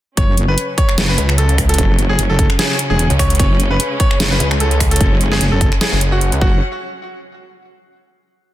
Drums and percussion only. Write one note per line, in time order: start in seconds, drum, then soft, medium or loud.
0.17 kick loud
0.17 closed hi-hat medium
0.37 closed hi-hat medium
0.58 closed hi-hat medium
0.78 kick loud
0.78 closed hi-hat medium
0.89 finger snap medium
0.98 snare loud
0.98 closed hi-hat medium
1.18 closed hi-hat medium
1.29 finger snap medium
1.38 closed hi-hat medium
1.49 closed hi-hat soft
1.58 finger snap medium
1.58 kick medium
1.58 open hi-hat loud
1.69 closed hi-hat medium
1.74 closed hi-hat medium
1.78 kick loud
1.78 closed hi-hat medium
1.99 closed hi-hat medium
2.19 closed hi-hat medium
2.39 kick loud
2.39 closed hi-hat medium
2.50 finger snap medium
2.59 snare loud
2.59 closed hi-hat medium
2.79 closed hi-hat medium
2.99 closed hi-hat medium
3.10 closed hi-hat soft
3.19 finger snap medium
3.19 kick medium
3.19 open hi-hat loud
3.30 closed hi-hat medium
3.35 closed hi-hat medium
3.39 kick loud
3.39 closed hi-hat medium
3.60 closed hi-hat medium
3.80 closed hi-hat medium
4.00 kick loud
4.00 closed hi-hat medium
4.11 finger snap medium
4.20 snare loud
4.20 closed hi-hat medium
4.40 closed hi-hat medium
4.51 finger snap medium
4.60 closed hi-hat medium
4.71 closed hi-hat soft
4.80 finger snap medium
4.80 kick medium
4.80 open hi-hat medium
4.91 closed hi-hat medium
4.96 closed hi-hat medium
5.01 kick loud
5.01 closed hi-hat medium
5.21 closed hi-hat medium
5.32 snare soft
5.41 closed hi-hat medium
5.61 kick loud
5.61 closed hi-hat soft
5.72 finger snap medium
5.81 snare loud
5.81 closed hi-hat medium
6.01 closed hi-hat medium
6.21 closed hi-hat medium
6.32 closed hi-hat soft
6.42 kick loud